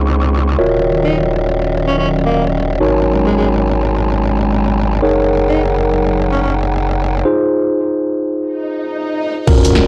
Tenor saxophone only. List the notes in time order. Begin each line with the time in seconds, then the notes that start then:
1.04 D#4
1.87 C#4
1.98 C#4
2.25 A#3
3.26 G#3
3.37 G#3
5.49 D#4
6.32 C#4
6.42 C#4